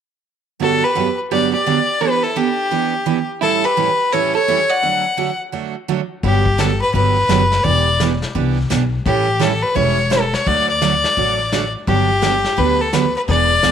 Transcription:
0.60 G2 D3 F#3 B3 D4 F#4 G4 A4
0.84 G4 B4
0.95 G2 D3 F#3 B3 D4 G4
1.31 G2 D3 F#3 B3 D4 G4 D5
1.54 G4 D5
1.66 G2 D3 F#3 B3 D4 G4
2.01 E3 B3 D4 G4 B4
2.23 E4 A4
2.36 E3 B3 D4 G4
2.71 E3 B3 D4 G4
3.06 E3 B3 D4 G4
3.41 A2 E3 G3 C#4 E4 A4
3.64 G4 B4
3.77 A2 E3 G3 C#4 E4 A4
4.12 A2 E3 G3 C#4 E4 A4 C#5
4.35 A4 C#5
4.48 A2 E3 G3 C#4 E4 A4
4.69 D5 F#5
4.82 D3 F#3 A3 D4 F#4
5.17 D3 F#3 A3 D4 F#4
5.52 D3 F#3 A3 D4 F#4
5.88 D3 F#3 A3 D4 F#4
6.23 G1 D3 F#3 B3 D4 G4, brush sweep, kick
6.46 kick
6.58 D3 F#3 B3 D4 G4 A4, snare, hi-hat pedal
6.81 B4
6.94 G1 D3 F#3 B3 D4 G4 B4, brush sweep, kick
7.29 F#1 D3 F#3 B3 D4 G4, snare, hi-hat pedal
7.52 snare
7.64 E1 E3 B3 D4 G4 D5, brush sweep, kick
8.00 E3 B3 D4 G4, snare, hi-hat pedal
8.22 snare
8.35 C2 E3 B3 D4 G4, brush sweep, kick
8.70 B1 E3 B3 D4 G4, snare, hi-hat pedal
9.06 A1 E3 G3 C#4 E4 G4 A4, brush sweep, kick
9.39 E3 G3 C#4 E4 A4, snare, hi-hat pedal
9.62 B4
9.75 E1 E3 G3 C#4 E4 A4 C#5, brush sweep, kick
10.10 E3 G3 C#4 E4 A4, snare, hi-hat pedal
10.34 C#5, snare
10.46 D2 D3 F#3 A3 D4 F#4 D5, brush sweep, kick
10.69 D5
10.82 D3 F#3 A3 D4 F#4, snare, hi-hat pedal
11.04 snare
11.17 A1 D3 F#3 A3 D4 F#4, brush sweep, kick
11.52 D3 F#3 A3 D4 F#4, snare, hi-hat pedal
11.87 G1 D3 F#3 B3 D4 G4, brush sweep, kick
12.22 D3 F#3 B3 D4 G4, snare, hi-hat pedal
12.44 snare
12.57 D2 D3 F#3 B3 D4 G4 B4, brush sweep, kick
12.81 A4
12.93 D3 F#3 B3 D4 G4 B4, snare, hi-hat pedal
13.16 B4
13.28 E1 E3 B3 D4 G#4 D5, brush sweep, kick
13.63 D2 E3 B3 D4 G#4, snare, hi-hat pedal

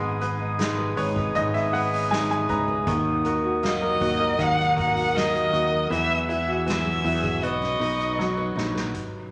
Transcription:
Already playing: G#1 G#2 G#3 D#4 B4 G#5 D#6
0.02 B3
0.21 B4, hi-hat pedal, open hi-hat
0.40 D#4
0.59 G#3 D#4, snare, hi-hat pedal, open hi-hat
0.78 B4
0.96 G#1 D#4 B4 C#5, hi-hat pedal, open hi-hat
1.16 B4, kick
1.35 G#1 G#2 D#4 D#5, hi-hat pedal, open hi-hat
1.54 B3 E5, snare, open hi-hat
1.73 B4 F#5, hi-hat pedal, open hi-hat
1.92 D#4, hi-hat pedal, open hi-hat
2.11 G#3 D#4 G#5, snare, hi-hat pedal, open hi-hat
2.31 B4 G#5, hi-hat pedal
2.49 C#2 D#4 B4 A#5, kick, hi-hat pedal, open hi-hat
2.68 B4
2.87 D#2 D#3 A#4 F#5, kick, hi-hat pedal, open hi-hat
3.06 D#4
3.24 F#4 A#4, hi-hat pedal, open hi-hat
3.43 F#4
3.63 F#3 A#3 D#5, snare, hi-hat pedal, open hi-hat
3.81 A#4
4.01 D#2 F#4, kick, hi-hat pedal, open hi-hat
4.19 A#4
4.38 D#2 D#3 A#3 F#5, kick, hi-hat pedal, open hi-hat
4.58 D#4, snare, open hi-hat
4.76 F#4 A#4 F#5, kick, hi-hat pedal, open hi-hat
4.95 F#4, hi-hat pedal, open hi-hat
5.14 F#3 A#4 D#5, snare, hi-hat pedal, open hi-hat
5.33 A#4, hi-hat pedal
5.52 D#2 F#4, hi-hat pedal, open hi-hat
5.71 A#4
5.90 E2 E3 G#4 E5 F#5 E6, hi-hat pedal, open hi-hat
6.09 B3
6.28 E4 G#4 E5, hi-hat pedal, open hi-hat
6.48 F#4
6.66 F#3 B3 E5, snare, hi-hat pedal, open hi-hat
6.85 G#4
7.04 E2 E4 F#4, hi-hat pedal, open hi-hat
7.23 G#4, kick
7.42 B1 B3 B4 D#5 C#6, hi-hat pedal, open hi-hat
7.61 C#4, snare, open hi-hat
7.79 B1 D#4 B4, hi-hat pedal, open hi-hat
7.99 D#4, hi-hat pedal
8.18 F#3, snare
8.37 B4
8.56 A#1 D#4, snare
8.75 B4, snare
8.94 kick, closed hi-hat

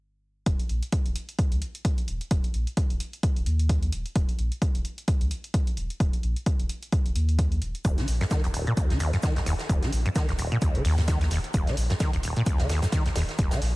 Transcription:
0.46 D#1, kick, closed hi-hat
0.59 closed hi-hat
0.69 A#1, closed hi-hat
0.83 closed hi-hat
0.92 kick, closed hi-hat
1.06 D#1, closed hi-hat
1.16 closed hi-hat
1.29 closed hi-hat
1.39 kick, closed hi-hat
1.52 C#2, closed hi-hat
1.62 closed hi-hat
1.75 closed hi-hat
1.85 kick, closed hi-hat
1.98 closed hi-hat
2.08 D#1, closed hi-hat
2.21 closed hi-hat
2.31 D#1, kick, closed hi-hat
2.44 closed hi-hat
2.54 A#1, closed hi-hat
2.67 closed hi-hat
2.77 kick, closed hi-hat
2.90 D#1, closed hi-hat
3.00 closed hi-hat
3.13 closed hi-hat
3.23 kick, closed hi-hat
3.36 D#1, closed hi-hat
3.46 D#2, closed hi-hat
3.59 closed hi-hat
3.69 kick, closed hi-hat
3.83 closed hi-hat
3.92 D#1, closed hi-hat
4.06 closed hi-hat
4.16 D#1, kick, closed hi-hat
4.29 closed hi-hat
4.39 A#1, closed hi-hat
4.52 closed hi-hat
4.62 kick, closed hi-hat
4.75 D#1, closed hi-hat
4.85 closed hi-hat
4.98 closed hi-hat
5.08 kick, closed hi-hat
5.21 C#2, closed hi-hat
5.31 closed hi-hat
5.44 closed hi-hat
5.54 kick, closed hi-hat
5.67 closed hi-hat
5.77 D#1, closed hi-hat
5.90 closed hi-hat
6.00 D#1, kick, closed hi-hat
6.13 closed hi-hat
6.23 A#1, closed hi-hat
6.36 closed hi-hat
6.46 kick, closed hi-hat
6.59 D#1, closed hi-hat
6.69 closed hi-hat
6.83 closed hi-hat
6.92 kick, closed hi-hat
7.06 D#1, closed hi-hat
7.16 D#2, closed hi-hat
7.29 closed hi-hat
7.39 kick, closed hi-hat
7.52 closed hi-hat
7.62 D#1, closed hi-hat
7.75 closed hi-hat
7.85 D#1 D#2, kick, closed hi-hat, shaker
7.98 D#3, snare, closed hi-hat
8.08 A#1, open hi-hat, shaker
8.21 F#2, snare, closed hi-hat
8.31 D#3, kick, snare, closed hi-hat, shaker
8.44 D#1 D#2, closed hi-hat
8.54 D#1, open hi-hat, shaker
8.67 A#2, closed hi-hat
8.77 D#2, kick, closed hi-hat, shaker
8.90 C#2 D#3, snare, closed hi-hat
9.00 D#2, open hi-hat, shaker
9.13 F#2, snare, closed hi-hat
9.23 D#3, kick, snare, closed hi-hat, shaker
9.36 D#2, snare, closed hi-hat
9.46 D#1 D#2, snare, open hi-hat, shaker
9.59 snare, closed hi-hat
9.69 D#1 D#2, kick, closed hi-hat, shaker
9.82 D#3, snare, closed hi-hat
9.93 A#1, open hi-hat, shaker
10.06 F#2, closed hi-hat
10.16 D#3, kick, snare, closed hi-hat, shaker
10.29 D#1 D#2, snare, closed hi-hat
10.39 D#1, open hi-hat, shaker
10.52 A#2, closed hi-hat
10.62 D#2, kick, closed hi-hat, shaker
10.75 D#1 D#3, closed hi-hat
10.85 D#2, open hi-hat
10.98 F#2, snare, closed hi-hat
11.08 D#3, kick, snare, closed hi-hat, shaker
11.21 D#2, snare, closed hi-hat
11.31 D#1 D#2, snare, open hi-hat, shaker
11.44 closed hi-hat
11.54 D#1 D#2, kick, closed hi-hat, shaker
11.67 D#3, snare, closed hi-hat
11.77 A#1, open hi-hat, shaker
11.90 F#2, snare, closed hi-hat
12.00 D#3, kick, snare, closed hi-hat, shaker
12.13 D#1 D#2, closed hi-hat
12.23 D#1, open hi-hat, shaker
12.36 A#2, closed hi-hat
12.46 D#2, kick, closed hi-hat, shaker
12.58 C#2 D#3, snare, closed hi-hat
12.69 D#2, snare, open hi-hat, shaker
12.82 F#2, snare, closed hi-hat, shaker
12.92 D#3, kick, snare, closed hi-hat, shaker
13.06 D#2, snare, closed hi-hat
13.16 D#1 D#2, snare, open hi-hat, shaker
13.29 snare, closed hi-hat
13.38 D#1 D#2, kick, closed hi-hat, shaker
13.51 D#3, snare, closed hi-hat, shaker
13.62 A#1, snare, open hi-hat

